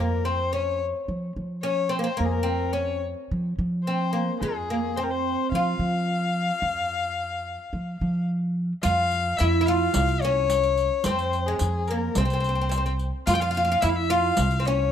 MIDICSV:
0, 0, Header, 1, 5, 480
1, 0, Start_track
1, 0, Tempo, 554017
1, 1900, Time_signature, 4, 2, 24, 8
1, 12926, End_track
2, 0, Start_track
2, 0, Title_t, "Violin"
2, 0, Program_c, 0, 40
2, 0, Note_on_c, 0, 70, 65
2, 215, Note_on_c, 0, 72, 72
2, 228, Note_off_c, 0, 70, 0
2, 451, Note_on_c, 0, 73, 74
2, 464, Note_off_c, 0, 72, 0
2, 695, Note_off_c, 0, 73, 0
2, 1408, Note_on_c, 0, 73, 74
2, 1656, Note_on_c, 0, 72, 72
2, 1669, Note_off_c, 0, 73, 0
2, 1769, Note_off_c, 0, 72, 0
2, 1774, Note_on_c, 0, 72, 65
2, 1894, Note_on_c, 0, 70, 72
2, 1907, Note_off_c, 0, 72, 0
2, 1949, Note_on_c, 0, 68, 57
2, 1962, Note_off_c, 0, 70, 0
2, 2010, Note_on_c, 0, 70, 70
2, 2023, Note_off_c, 0, 68, 0
2, 2362, Note_on_c, 0, 73, 66
2, 2375, Note_off_c, 0, 70, 0
2, 2611, Note_off_c, 0, 73, 0
2, 3328, Note_on_c, 0, 72, 67
2, 3780, Note_off_c, 0, 72, 0
2, 3817, Note_on_c, 0, 68, 76
2, 4301, Note_on_c, 0, 72, 70
2, 4314, Note_off_c, 0, 68, 0
2, 4361, Note_on_c, 0, 70, 60
2, 4374, Note_off_c, 0, 72, 0
2, 4423, Note_on_c, 0, 72, 73
2, 4436, Note_off_c, 0, 70, 0
2, 4777, Note_off_c, 0, 72, 0
2, 4782, Note_on_c, 0, 77, 83
2, 7146, Note_off_c, 0, 77, 0
2, 7651, Note_on_c, 0, 77, 92
2, 8122, Note_on_c, 0, 76, 78
2, 8135, Note_off_c, 0, 77, 0
2, 8367, Note_on_c, 0, 77, 86
2, 8380, Note_off_c, 0, 76, 0
2, 8849, Note_on_c, 0, 73, 85
2, 8862, Note_off_c, 0, 77, 0
2, 9565, Note_on_c, 0, 72, 78
2, 9578, Note_off_c, 0, 73, 0
2, 9931, Note_on_c, 0, 68, 71
2, 9944, Note_off_c, 0, 72, 0
2, 10292, Note_on_c, 0, 70, 69
2, 10305, Note_off_c, 0, 68, 0
2, 10543, Note_on_c, 0, 72, 74
2, 10556, Note_off_c, 0, 70, 0
2, 11260, Note_off_c, 0, 72, 0
2, 11491, Note_on_c, 0, 77, 89
2, 11556, Note_on_c, 0, 79, 79
2, 11569, Note_off_c, 0, 77, 0
2, 11612, Note_on_c, 0, 77, 92
2, 11625, Note_off_c, 0, 79, 0
2, 11969, Note_on_c, 0, 76, 82
2, 11982, Note_off_c, 0, 77, 0
2, 12035, Note_on_c, 0, 77, 71
2, 12048, Note_off_c, 0, 76, 0
2, 12093, Note_on_c, 0, 76, 90
2, 12106, Note_off_c, 0, 77, 0
2, 12212, Note_on_c, 0, 77, 90
2, 12225, Note_off_c, 0, 76, 0
2, 12700, Note_on_c, 0, 73, 82
2, 12713, Note_off_c, 0, 77, 0
2, 12926, Note_off_c, 0, 73, 0
2, 12926, End_track
3, 0, Start_track
3, 0, Title_t, "Oud"
3, 0, Program_c, 1, 24
3, 0, Note_on_c, 1, 58, 77
3, 217, Note_on_c, 1, 60, 69
3, 230, Note_off_c, 1, 58, 0
3, 441, Note_off_c, 1, 60, 0
3, 457, Note_on_c, 1, 61, 66
3, 681, Note_off_c, 1, 61, 0
3, 1414, Note_on_c, 1, 61, 83
3, 1637, Note_off_c, 1, 61, 0
3, 1641, Note_on_c, 1, 60, 79
3, 1712, Note_off_c, 1, 60, 0
3, 1724, Note_on_c, 1, 58, 66
3, 1766, Note_on_c, 1, 60, 76
3, 1782, Note_off_c, 1, 58, 0
3, 1880, Note_on_c, 1, 58, 83
3, 1897, Note_off_c, 1, 60, 0
3, 2105, Note_on_c, 1, 60, 75
3, 2137, Note_off_c, 1, 58, 0
3, 2362, Note_off_c, 1, 60, 0
3, 2366, Note_on_c, 1, 61, 73
3, 2596, Note_off_c, 1, 61, 0
3, 3355, Note_on_c, 1, 60, 74
3, 3576, Note_on_c, 1, 58, 70
3, 3595, Note_off_c, 1, 60, 0
3, 3825, Note_off_c, 1, 58, 0
3, 3835, Note_on_c, 1, 56, 77
3, 4071, Note_off_c, 1, 56, 0
3, 4075, Note_on_c, 1, 58, 73
3, 4306, Note_off_c, 1, 58, 0
3, 4309, Note_on_c, 1, 60, 82
3, 4799, Note_off_c, 1, 60, 0
3, 4809, Note_on_c, 1, 65, 88
3, 7160, Note_off_c, 1, 65, 0
3, 7650, Note_on_c, 1, 65, 98
3, 8141, Note_off_c, 1, 65, 0
3, 8144, Note_on_c, 1, 64, 92
3, 8309, Note_off_c, 1, 64, 0
3, 8326, Note_on_c, 1, 64, 69
3, 8383, Note_off_c, 1, 64, 0
3, 8389, Note_on_c, 1, 65, 97
3, 8873, Note_off_c, 1, 65, 0
3, 8877, Note_on_c, 1, 61, 89
3, 9579, Note_off_c, 1, 61, 0
3, 9582, Note_on_c, 1, 60, 84
3, 9915, Note_off_c, 1, 60, 0
3, 9946, Note_on_c, 1, 56, 73
3, 10312, Note_off_c, 1, 56, 0
3, 10316, Note_on_c, 1, 58, 76
3, 10550, Note_on_c, 1, 60, 69
3, 10554, Note_off_c, 1, 58, 0
3, 10605, Note_off_c, 1, 60, 0
3, 10617, Note_on_c, 1, 60, 51
3, 10671, Note_off_c, 1, 60, 0
3, 10687, Note_on_c, 1, 60, 51
3, 10737, Note_off_c, 1, 60, 0
3, 10747, Note_on_c, 1, 60, 48
3, 10801, Note_off_c, 1, 60, 0
3, 10820, Note_on_c, 1, 60, 48
3, 10866, Note_off_c, 1, 60, 0
3, 10877, Note_on_c, 1, 60, 44
3, 10919, Note_off_c, 1, 60, 0
3, 10930, Note_on_c, 1, 60, 51
3, 10989, Note_off_c, 1, 60, 0
3, 10997, Note_on_c, 1, 60, 47
3, 11055, Note_off_c, 1, 60, 0
3, 11068, Note_on_c, 1, 60, 55
3, 11123, Note_off_c, 1, 60, 0
3, 11140, Note_on_c, 1, 60, 47
3, 11192, Note_off_c, 1, 60, 0
3, 11497, Note_on_c, 1, 65, 96
3, 11556, Note_off_c, 1, 65, 0
3, 11566, Note_on_c, 1, 65, 78
3, 11616, Note_off_c, 1, 65, 0
3, 11626, Note_on_c, 1, 65, 83
3, 11687, Note_off_c, 1, 65, 0
3, 11703, Note_on_c, 1, 65, 70
3, 11748, Note_off_c, 1, 65, 0
3, 11759, Note_on_c, 1, 65, 81
3, 11813, Note_off_c, 1, 65, 0
3, 11823, Note_on_c, 1, 65, 70
3, 11874, Note_off_c, 1, 65, 0
3, 11884, Note_on_c, 1, 65, 82
3, 11946, Note_off_c, 1, 65, 0
3, 11975, Note_on_c, 1, 64, 93
3, 12213, Note_off_c, 1, 64, 0
3, 12217, Note_on_c, 1, 65, 102
3, 12643, Note_off_c, 1, 65, 0
3, 12647, Note_on_c, 1, 60, 64
3, 12702, Note_off_c, 1, 60, 0
3, 12714, Note_on_c, 1, 61, 87
3, 12926, Note_off_c, 1, 61, 0
3, 12926, End_track
4, 0, Start_track
4, 0, Title_t, "Upright bass"
4, 0, Program_c, 2, 32
4, 0, Note_on_c, 2, 41, 79
4, 791, Note_off_c, 2, 41, 0
4, 939, Note_on_c, 2, 53, 69
4, 1142, Note_off_c, 2, 53, 0
4, 1182, Note_on_c, 2, 53, 67
4, 1789, Note_off_c, 2, 53, 0
4, 1905, Note_on_c, 2, 41, 79
4, 2714, Note_off_c, 2, 41, 0
4, 2872, Note_on_c, 2, 53, 79
4, 3069, Note_off_c, 2, 53, 0
4, 3106, Note_on_c, 2, 53, 78
4, 3712, Note_off_c, 2, 53, 0
4, 3826, Note_on_c, 2, 41, 86
4, 4635, Note_off_c, 2, 41, 0
4, 4781, Note_on_c, 2, 53, 78
4, 4984, Note_off_c, 2, 53, 0
4, 5019, Note_on_c, 2, 53, 76
4, 5628, Note_off_c, 2, 53, 0
4, 5736, Note_on_c, 2, 41, 84
4, 6549, Note_off_c, 2, 41, 0
4, 6696, Note_on_c, 2, 53, 72
4, 6901, Note_off_c, 2, 53, 0
4, 6943, Note_on_c, 2, 53, 74
4, 7550, Note_off_c, 2, 53, 0
4, 7668, Note_on_c, 2, 41, 85
4, 8070, Note_off_c, 2, 41, 0
4, 8150, Note_on_c, 2, 41, 80
4, 8551, Note_off_c, 2, 41, 0
4, 8621, Note_on_c, 2, 36, 81
4, 9431, Note_off_c, 2, 36, 0
4, 9573, Note_on_c, 2, 41, 88
4, 9981, Note_off_c, 2, 41, 0
4, 10058, Note_on_c, 2, 41, 84
4, 10463, Note_off_c, 2, 41, 0
4, 10537, Note_on_c, 2, 36, 84
4, 11348, Note_off_c, 2, 36, 0
4, 11501, Note_on_c, 2, 41, 86
4, 11905, Note_off_c, 2, 41, 0
4, 11986, Note_on_c, 2, 41, 83
4, 12388, Note_off_c, 2, 41, 0
4, 12464, Note_on_c, 2, 36, 85
4, 12926, Note_off_c, 2, 36, 0
4, 12926, End_track
5, 0, Start_track
5, 0, Title_t, "Riq"
5, 7651, Note_on_c, 9, 54, 51
5, 7737, Note_off_c, 9, 54, 0
5, 7896, Note_on_c, 9, 54, 19
5, 7983, Note_off_c, 9, 54, 0
5, 8131, Note_on_c, 9, 54, 45
5, 8218, Note_off_c, 9, 54, 0
5, 8376, Note_on_c, 9, 54, 19
5, 8462, Note_off_c, 9, 54, 0
5, 8610, Note_on_c, 9, 54, 61
5, 8697, Note_off_c, 9, 54, 0
5, 8738, Note_on_c, 9, 54, 18
5, 8824, Note_off_c, 9, 54, 0
5, 8855, Note_on_c, 9, 54, 17
5, 8942, Note_off_c, 9, 54, 0
5, 9095, Note_on_c, 9, 54, 49
5, 9181, Note_off_c, 9, 54, 0
5, 9213, Note_on_c, 9, 54, 19
5, 9300, Note_off_c, 9, 54, 0
5, 9335, Note_on_c, 9, 54, 17
5, 9422, Note_off_c, 9, 54, 0
5, 9564, Note_on_c, 9, 54, 61
5, 9650, Note_off_c, 9, 54, 0
5, 9691, Note_on_c, 9, 54, 19
5, 9778, Note_off_c, 9, 54, 0
5, 9816, Note_on_c, 9, 54, 18
5, 9903, Note_off_c, 9, 54, 0
5, 10044, Note_on_c, 9, 54, 46
5, 10131, Note_off_c, 9, 54, 0
5, 10288, Note_on_c, 9, 54, 17
5, 10375, Note_off_c, 9, 54, 0
5, 10529, Note_on_c, 9, 54, 58
5, 10616, Note_off_c, 9, 54, 0
5, 10658, Note_on_c, 9, 54, 18
5, 10744, Note_off_c, 9, 54, 0
5, 10779, Note_on_c, 9, 54, 19
5, 10866, Note_off_c, 9, 54, 0
5, 11016, Note_on_c, 9, 54, 46
5, 11102, Note_off_c, 9, 54, 0
5, 11140, Note_on_c, 9, 54, 19
5, 11227, Note_off_c, 9, 54, 0
5, 11257, Note_on_c, 9, 54, 17
5, 11344, Note_off_c, 9, 54, 0
5, 11501, Note_on_c, 9, 54, 59
5, 11588, Note_off_c, 9, 54, 0
5, 11619, Note_on_c, 9, 54, 19
5, 11705, Note_off_c, 9, 54, 0
5, 11735, Note_on_c, 9, 54, 19
5, 11822, Note_off_c, 9, 54, 0
5, 11975, Note_on_c, 9, 54, 49
5, 12062, Note_off_c, 9, 54, 0
5, 12219, Note_on_c, 9, 54, 18
5, 12306, Note_off_c, 9, 54, 0
5, 12448, Note_on_c, 9, 54, 59
5, 12534, Note_off_c, 9, 54, 0
5, 12570, Note_on_c, 9, 54, 17
5, 12657, Note_off_c, 9, 54, 0
5, 12694, Note_on_c, 9, 54, 16
5, 12781, Note_off_c, 9, 54, 0
5, 12926, End_track
0, 0, End_of_file